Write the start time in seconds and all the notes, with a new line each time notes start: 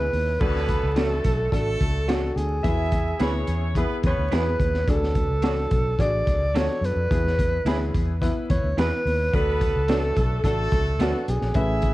Already playing: E4 G#4 B4
0.13 D#2, open hi-hat
0.40 D2 B3 D4 F#4 A4 B4, kick, crash
0.56 snare
0.69 kick, closed hi-hat
0.83 C#2
0.95 A3 D4 F#4 A4, snare, closed hi-hat
1.24 B1, kick, closed hi-hat
1.52 A1 A3 D4 F#4 A4, kick, closed hi-hat
1.81 C#2, kick, closed hi-hat
2.07 A3 D4 F#4 G#4, snare, closed hi-hat
2.14 A4
2.36 D2 G#4, closed hi-hat
2.63 E2 B3 E4 G#4 E5, kick, closed hi-hat
2.92 kick, closed hi-hat
3.20 D2 B3 C#4 E4 G#4 B4 C#5, snare, closed hi-hat
3.47 E2, closed hi-hat
3.75 B3 E4 G#4 B4, kick, closed hi-hat
4.03 E2 B3 B4 C#5, kick, closed hi-hat
4.18 D2
4.31 E2 B3 E4 F#4 G#4 B4, snare, closed hi-hat
4.39 G#4
4.60 D#2, kick, closed hi-hat
4.74 snare
4.88 D2 D4 F#4 G#4 A4, kick, closed hi-hat
4.95 A4
5.03 snare
5.15 kick, closed hi-hat
5.29 C#2
5.42 A3 D4 F#4 A4, snare, closed hi-hat
5.71 B1, kick, closed hi-hat
5.99 A1 D4 F#4 G#4 D5, kick, closed hi-hat
6.27 C#2, kick, closed hi-hat
6.54 D2 A3 D4 F4 F#4 A4 C#5, snare, closed hi-hat
6.61 F#4
6.81 F#2 B4, closed hi-hat
6.96 F2
7.10 E2 B3 E4 G#4, kick, closed hi-hat
7.27 snare
7.39 kick, closed hi-hat
7.65 D2 B3 E4 G#4 B4, snare, closed hi-hat
7.94 E2, kick, closed hi-hat
8.21 B3 E4 B4, kick, closed hi-hat
8.50 E2 C#5, kick, closed hi-hat
8.63 D2
8.77 E2 B3 E4 G#4 B4, snare, closed hi-hat
9.05 D#2, open hi-hat
9.32 D2 B3 D4 F#4 A4 B4, kick, closed hi-hat
9.61 kick, closed hi-hat
9.76 C#2
9.88 A3 D4 F#4 A4 B4, snare, closed hi-hat
10.17 B1, kick, closed hi-hat
10.44 A1 A3 D4 F#4 A4, kick, closed hi-hat
10.72 C#2, kick, closed hi-hat
10.99 D2 A3 D4 F#4 A#4, snare, closed hi-hat
11.07 B4
11.28 B1 G#4, closed hi-hat
11.41 A#1, snare
11.54 A1 A3 C#4 E4 B4 E5, kick, closed hi-hat
11.82 kick, closed hi-hat